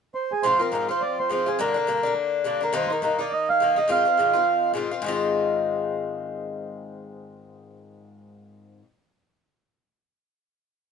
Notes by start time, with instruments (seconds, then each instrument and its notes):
0.15 accordion C5
0.32 accordion G#4
0.43 bouzouki G#2 F3 C4 F4, accordion C5
0.59 bouzouki F3 C4 F4, accordion A#4
0.72 bouzouki G#2 F3 C4 F4, accordion A#4
0.89 bouzouki F3 C4 F4, accordion C5
1.02 accordion D5
1.19 accordion C5
1.29 bouzouki G#2 F3 C4 F4, accordion C5
1.46 bouzouki F3 C4 F4, accordion G#4
1.59 bouzouki G2 D3 A#3 D4, accordion A#4
1.74 bouzouki D3 A#3 D4
1.87 bouzouki G2 D3 A#3 D4
2.03 bouzouki D3 A#3 D4
2.44 bouzouki G2 D3 A#3 D4, accordion D5
2.61 bouzouki D3 A#3 D4, accordion A#4
2.73 bouzouki G2 D#3 A#3 D#4, accordion C5
2.88 bouzouki D#4, accordion C5
2.92 bouzouki D#3 A#3, accordion A#4
3.02 bouzouki G2 D#3 A#3 D#4, accordion A#4
3.19 bouzouki D#3 A#3 D#4, accordion D5
3.33 accordion D#5
3.49 accordion F5
3.60 bouzouki G2 D#3 A#3 D#4
3.76 bouzouki D#3 A#3 D#4, accordion D#5
3.88 bouzouki G#2 D#3 C4 F4, accordion F5
4.05 bouzouki D#3 C4 F4
4.18 bouzouki G#2 D#3 C4 F4
4.33 bouzouki D#3 C4 F4
4.74 bouzouki G#2 D#3 C4 F4
4.91 bouzouki D#3 C4 F4
5.02 bouzouki G#2 D#3
5.06 bouzouki C4 F4